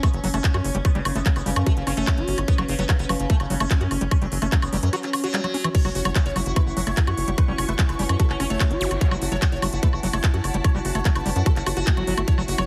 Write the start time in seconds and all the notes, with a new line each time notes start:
Already playing: C#4
0.03 A3 B3, kick, closed hi-hat, high woodblock
0.13 F#1 F#3, closed hi-hat
0.24 F#1 F#3, open hi-hat
0.34 F#1 A3 C#4, closed hi-hat, high woodblock
0.44 kick, clap, closed hi-hat
0.54 F#2 F#4, closed hi-hat, high woodblock
0.64 F#1, open hi-hat
0.75 F#1 G3, closed hi-hat
0.85 B3, kick, closed hi-hat, high woodblock
0.95 F#1 C#3 G3, closed hi-hat
1.05 F#1 C#3, open hi-hat, high woodblock
1.15 F#1 A3 B3, closed hi-hat
1.26 C#3 F#3, kick, clap, closed hi-hat
1.36 F#1 B3, closed hi-hat, high woodblock
1.46 F#1 C#3 G3, open hi-hat
1.56 F#2 C#3, closed hi-hat, high woodblock
1.66 A3 F#4, kick, closed hi-hat
1.77 F#1 C#3, closed hi-hat
1.87 F#1 C#3 C#4, open hi-hat, high woodblock
1.97 F#1 A3 C#4, closed hi-hat
2.07 kick, clap, closed hi-hat, high woodblock
2.17 G1 F#4, closed hi-hat
2.28 G1, open hi-hat
2.38 G1 C#4, closed hi-hat, high woodblock
2.48 B3, kick, closed hi-hat
2.58 F#1 C#3 F#3, closed hi-hat, high woodblock
2.68 F#1 C#3, open hi-hat
2.79 F#1 F#3 B3, closed hi-hat
2.89 C#3 F#3, kick, clap, closed hi-hat, high woodblock
2.99 F#1 B3, closed hi-hat
3.09 F#1 C#3 F#3, open hi-hat, high woodblock
3.20 F#1 C#3, closed hi-hat
3.30 A3, kick, closed hi-hat
3.40 F#1 C#3, closed hi-hat, high woodblock
3.50 F#1 C#3 F#3, open hi-hat
3.60 F#1 A3 C#4, closed hi-hat, high woodblock
3.71 kick, clap, closed hi-hat
3.81 F#2 F#4, closed hi-hat
3.91 F#1, open hi-hat, high woodblock
4.01 F#1 G3, closed hi-hat
4.11 C#4, kick, closed hi-hat, high woodblock
4.22 F#1 F#3 G3, closed hi-hat
4.32 F#1 F#3, open hi-hat
4.42 F#1 A3 C#4, closed hi-hat, high woodblock
4.52 F#3, kick, clap, closed hi-hat
4.62 F#1 B3, closed hi-hat, high woodblock
4.73 F#1 F#3 G3, open hi-hat
4.83 F#2 F#3, closed hi-hat
4.93 F#3 F#4, closed hi-hat, high woodblock
5.03 F#3, clap, closed hi-hat
5.13 F#3, open hi-hat, high woodblock
5.24 F#3 F#4, closed hi-hat
5.34 G3, clap, closed hi-hat
5.44 F#3, closed hi-hat, high woodblock
5.54 C#4, open hi-hat
5.64 E3, closed hi-hat, high woodblock
5.75 C#4 E4 C#5, kick, closed hi-hat, crash
5.85 F#1 F#3 F#4, high woodblock
5.91 F#1 F#4 F#5 C#6, open hi-hat
6.05 F#1 F#3 C#5, closed hi-hat, high woodblock
6.15 F#3 F#4, kick, clap, closed hi-hat
6.26 F#1 C#5, closed hi-hat
6.36 F#1 F#3 F#4, open hi-hat, high woodblock
6.46 F#1 F#4, closed hi-hat
6.56 A3 B4, kick, closed hi-hat, high woodblock
6.67 F#1 F#4
6.77 F#1 F#3 F#4, open hi-hat
6.87 F#1 A3 C#5, closed hi-hat, high woodblock
6.97 kick, clap, closed hi-hat
7.07 F#2 F#4, closed hi-hat, high woodblock
7.17 F#1, open hi-hat
7.28 F#1 G3, closed hi-hat
7.38 B4, kick, closed hi-hat, high woodblock
7.48 F#1 G3 C#4
7.58 F#1 C#4, open hi-hat, high woodblock
7.69 F#1 A3 B4, closed hi-hat
7.79 F#3 C#4, kick, clap, closed hi-hat
7.89 F#1 B4, closed hi-hat, high woodblock
7.99 F#1 G3 C#4, open hi-hat
8.09 F#2 C#4, closed hi-hat, high woodblock
8.20 F#4 A4, kick, closed hi-hat
8.30 F#1 C#4, clap
8.40 F#1 C#4, open hi-hat, high woodblock
8.50 F#1 A3 C#5, closed hi-hat
8.60 kick, clap, closed hi-hat, high woodblock
8.71 G1 F#4, closed hi-hat
8.81 G1, open hi-hat, zap
8.91 G1 C#4, closed hi-hat, high woodblock
9.01 C#5, kick, closed hi-hat
9.11 F#1 F#3 F#4, high woodblock
9.19 F#1 F#4 A5, open hi-hat
9.32 F#1 F#3 C#5, closed hi-hat
9.42 F#3 F#4, kick, clap, closed hi-hat, high woodblock
9.52 F#1 C#5, closed hi-hat
9.62 F#1 F#3 F#4, open hi-hat, high woodblock
9.73 F#1 F#4, closed hi-hat
9.83 A3 B4, kick, closed hi-hat
9.93 F#1 F#4, high woodblock
10.03 F#1 F#3 F#4, open hi-hat
10.13 F#1 A3 C#5, closed hi-hat, high woodblock
10.24 kick, clap, closed hi-hat
10.34 F#2 F#4, closed hi-hat
10.44 F#1, open hi-hat, high woodblock
10.54 F#1 G3, closed hi-hat
10.64 C#5, kick, closed hi-hat, high woodblock
10.75 F#1 G3 F#4
10.85 F#1 F#4, open hi-hat
10.95 F#1 A3 C#5, closed hi-hat, high woodblock
11.05 F#3, kick, clap, closed hi-hat
11.15 F#1 B4, closed hi-hat, high woodblock
11.26 F#1 G3 F#4, open hi-hat
11.36 F#2 F#4, closed hi-hat
11.46 F#4 A4, kick, closed hi-hat, high woodblock
11.56 F#1 F#4, clap, closed hi-hat
11.66 F#1 F#4, open hi-hat, high woodblock
11.77 F#1 F#4, closed hi-hat
11.87 A3, kick, clap, closed hi-hat
11.97 G1 F#3, closed hi-hat, high woodblock
12.07 G1 F#3, open hi-hat
12.17 G1 A3, closed hi-hat, high woodblock
12.28 C#5, kick, closed hi-hat
12.38 F#1 F#3 F#4, high woodblock
12.45 F#1 F#4 C#6, open hi-hat
12.58 F#1 F#3 C#5, closed hi-hat, high woodblock